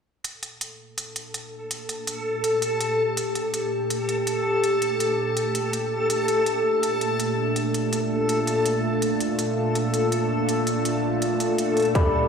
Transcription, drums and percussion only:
0.24 closed hi-hat
0.43 closed hi-hat
0.61 closed hi-hat
0.98 closed hi-hat
1.16 closed hi-hat
1.34 closed hi-hat
1.71 closed hi-hat
1.89 closed hi-hat
2.07 closed hi-hat
2.44 closed hi-hat
2.62 closed hi-hat
2.81 closed hi-hat
3.17 closed hi-hat
3.35 closed hi-hat
3.54 closed hi-hat
3.90 closed hi-hat
4.09 closed hi-hat
4.27 closed hi-hat
4.64 closed hi-hat
4.82 closed hi-hat
5.00 closed hi-hat
5.37 closed hi-hat
5.55 closed hi-hat
5.73 closed hi-hat
6.10 closed hi-hat
6.28 closed hi-hat
6.46 closed hi-hat
6.83 closed hi-hat
7.01 closed hi-hat
7.20 closed hi-hat
7.56 closed hi-hat
7.74 closed hi-hat
7.93 closed hi-hat
8.29 closed hi-hat
8.47 closed hi-hat
8.66 closed hi-hat
9.02 closed hi-hat
9.20 closed hi-hat
9.39 closed hi-hat
9.75 closed hi-hat
9.94 closed hi-hat
10.12 closed hi-hat
10.49 closed hi-hat
10.67 closed hi-hat
10.85 closed hi-hat
11.22 closed hi-hat
11.40 closed hi-hat
11.58 closed hi-hat
11.77 closed hi-hat
11.80 closed hi-hat
11.82 closed hi-hat
11.85 closed hi-hat
11.95 kick, closed hi-hat

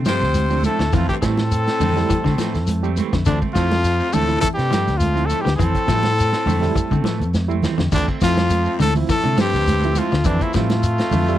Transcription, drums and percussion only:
0.05 snare, closed hi-hat, high conga, shekere
0.21 snare, closed hi-hat, shekere
0.34 closed hi-hat, high conga, shekere
0.50 closed hi-hat, shekere
0.63 closed hi-hat, high conga, shekere
0.79 snare, closed hi-hat, shekere
0.92 kick, snare, closed hi-hat, low conga, shekere
1.09 kick, closed hi-hat, shekere
1.22 kick, snare, closed hi-hat, shekere
1.37 snare, high conga, shekere
1.52 closed hi-hat, shekere
1.67 snare, closed hi-hat, shekere
1.80 open hi-hat, high conga, low conga, shekere
1.97 snare, shekere
2.10 kick, closed hi-hat, shekere
2.25 kick, snare, high conga, shekere
2.38 snare, closed hi-hat, high conga, shekere
2.54 snare, closed hi-hat, shekere
2.67 closed hi-hat, high conga, shekere
2.84 shekere
2.97 closed hi-hat, high conga, shekere
3.13 kick, snare, closed hi-hat, shekere
3.25 kick, closed hi-hat, low conga, shekere
3.42 kick, high conga, shekere
3.55 kick, snare, closed hi-hat, shekere
3.71 snare, closed hi-hat, high conga, shekere
3.84 snare, closed hi-hat, shekere
4.00 shekere
4.13 open hi-hat, high conga, low conga, shekere
4.29 closed hi-hat, shekere
4.42 kick, closed hi-hat, shekere
4.59 snare, closed hi-hat, shekere
4.72 snare, closed hi-hat, high conga, shekere
4.88 snare, closed hi-hat, shekere
5.00 closed hi-hat, high conga, shekere
5.17 closed hi-hat, shekere
5.30 closed hi-hat, shekere
5.46 snare, closed hi-hat, shekere
5.59 kick, closed hi-hat, low conga, shekere
5.75 kick, closed hi-hat, shekere
5.88 kick, snare, closed hi-hat, shekere
6.03 snare, high conga, shekere
6.18 closed hi-hat, shekere
6.33 snare, closed hi-hat, shekere
6.46 open hi-hat, high conga, low conga, shekere
6.62 snare, low conga, shekere
6.76 kick, closed hi-hat, shekere
6.91 kick, high conga, shekere
7.04 snare, closed hi-hat, high conga, shekere
7.21 closed hi-hat, shekere
7.33 snare, high conga, shekere
7.49 high conga, shekere
7.63 snare, low conga, shekere
7.78 snare, low conga, shekere
7.92 kick, crash, low conga, shekere
8.08 kick, shekere
8.21 kick, snare, closed hi-hat, shekere
8.36 snare, closed hi-hat, high conga, shekere
8.50 closed hi-hat, high conga, shekere
8.66 shekere
8.80 open hi-hat, high conga, low conga, shekere
8.95 low conga, shekere
9.09 kick, snare, closed hi-hat, shekere
9.24 closed hi-hat, high conga, shekere
9.37 snare, closed hi-hat, high conga, shekere
9.53 snare, shekere
9.67 closed hi-hat, high conga, shekere
9.83 closed hi-hat, shekere
9.95 closed hi-hat, high conga, shekere
10.12 snare, shekere
10.24 kick, closed hi-hat, low conga, shekere
10.41 kick, closed hi-hat, shekere
10.53 kick, snare, closed hi-hat, shekere
10.70 snare, closed hi-hat, high conga, shekere
10.83 closed hi-hat, shekere
10.98 snare, closed hi-hat, shekere
11.11 open hi-hat, high conga, low conga, shekere
11.28 shekere

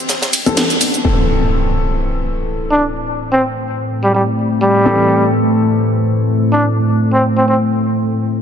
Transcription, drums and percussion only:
0.09 snare, closed hi-hat, ride, shaker
0.22 snare, closed hi-hat, ride, shaker
0.33 open hi-hat, ride, shaker
0.46 closed hi-hat, shaker
0.57 snare, closed hi-hat, ride, shaker
0.70 closed hi-hat, shaker
0.81 open hi-hat, ride, shaker
0.94 closed hi-hat, shaker
1.05 crash

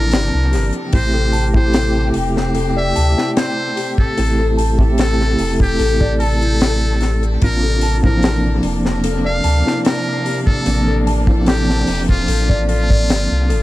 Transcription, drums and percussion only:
0.11 snare, open hi-hat
0.53 snare, open hi-hat
0.73 closed hi-hat
0.93 kick, open hi-hat
1.33 open hi-hat
1.54 kick
1.73 snare, open hi-hat
2.14 open hi-hat
2.37 snare
2.55 open hi-hat
2.96 open hi-hat
3.18 snare
3.37 snare, open hi-hat
3.77 open hi-hat
3.98 kick
4.18 open hi-hat
4.58 open hi-hat
4.79 kick
4.98 snare, open hi-hat
5.21 snare
5.38 open hi-hat
5.60 kick
5.79 open hi-hat
6.01 kick
6.20 open hi-hat
6.42 closed hi-hat
6.61 snare, open hi-hat
7.01 snare, open hi-hat
7.23 closed hi-hat
7.42 kick, open hi-hat
7.81 open hi-hat
8.04 kick
8.23 snare, open hi-hat
8.63 open hi-hat
8.86 snare
9.04 open hi-hat
9.44 open hi-hat
9.67 snare
9.85 snare, open hi-hat
10.26 open hi-hat
10.47 kick
10.66 open hi-hat
11.07 open hi-hat
11.27 kick
11.46 snare, open hi-hat
11.70 snare
11.87 open hi-hat
12.09 kick
12.28 open hi-hat
12.50 kick
12.69 open hi-hat
12.90 kick
13.09 snare, open hi-hat
13.50 open hi-hat

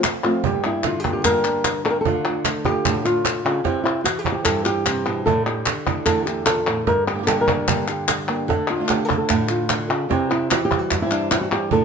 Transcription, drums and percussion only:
0.04 cajon slap, clap
0.24 clap
0.44 cajon bass
0.83 cajon slap, clap
1.05 cajon bass
1.25 cajon bass, cajon slap, clap
1.44 clap
1.64 cajon slap, clap
2.05 cajon bass
2.25 cajon slap
2.45 cajon slap, clap
2.65 cajon bass, clap
2.85 cajon bass, clap
3.06 clap
3.25 cajon slap, clap
3.65 cajon bass, cajon slap
3.86 cajon slap
4.06 cajon slap, clap
4.25 cajon bass, clap
4.45 cajon bass, cajon slap, clap
4.65 clap
4.86 cajon slap, clap
5.06 clap
5.27 cajon bass
5.47 cajon slap
5.66 cajon slap, clap
5.87 cajon bass
6.06 cajon bass, cajon slap, clap
6.27 clap
6.46 cajon slap, clap
6.87 cajon bass, cajon slap
7.09 cajon slap
7.28 cajon slap, clap
7.48 cajon bass
7.68 cajon bass, clap
7.88 clap
8.08 cajon slap, clap
8.50 cajon bass, cajon slap
8.71 cajon slap
8.88 cajon slap, clap
9.10 cajon bass
9.29 cajon bass, cajon slap, clap
9.49 clap
9.69 cajon slap, clap
10.11 cajon bass, cajon slap
10.31 cajon slap
10.51 cajon slap, clap
10.71 cajon bass, clap
10.91 cajon bass, cajon slap, clap
11.11 clap
11.31 cajon slap, clap
11.52 clap
11.71 cajon bass

